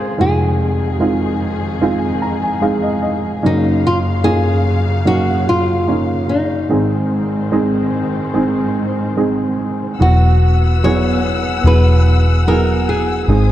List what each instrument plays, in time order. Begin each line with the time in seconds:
Already playing: upright piano C#2 C#3 G#3 C4 C#4 F4 G#4, string section C#3 F4 C5, nylon-string guitar G#4
0.18 upright piano F1 F2 G#3 C4 D#4 F4, string section F2 D#3 G#4, nylon-string guitar G#4
0.99 upright piano G#3 C4 D#4 F4, nylon-string guitar F#4
1.81 upright piano G#3 C4 D#4 F4
2.22 upright piano A#5
2.43 upright piano G#5
2.61 upright piano G#3 C4 D#4 G#4 F5
2.82 upright piano D#5
3.02 upright piano D#5
3.43 upright piano F#1 F#2 F#3 A#3 C#4 D#4, string section F#2 C#3 F5, nylon-string guitar D#4
3.87 nylon-string guitar F4
4.24 upright piano A#3 C#4 D#4 F4, nylon-string guitar G#4
5.05 upright piano F#3 A#3 C#4 D#4, nylon-string guitar F#4
5.49 nylon-string guitar F4
5.87 upright piano A#3 C#4 D#4 F4
6.29 nylon-string guitar D#4
6.68 upright piano G#1 G#2 G#3 C4 D#4 G#4, string section G#2 D#3 C4
7.52 upright piano G#3 C4 D#4 G#4
8.34 upright piano G#3 C4 D#4 G#4
9.17 upright piano G#3 C4 D#4 G#4
9.99 fingered electric bass E1, upright piano F#3 B3 E4 F#4, string section B3 F#5 E6, nylon-string guitar F#4
10.83 upright piano F#3 B3 E4 G#4, nylon-string guitar C#5
11.64 fingered electric bass E1, upright piano F#3 B3 E4 G#4, nylon-string guitar B4
12.47 upright piano F#3 B3 E4 G#4, nylon-string guitar A#4
12.89 nylon-string guitar G#4
13.28 fingered electric bass G#1, upright piano G#2 G#3 C4 D#4 G#4, string section C5 G#5 D#6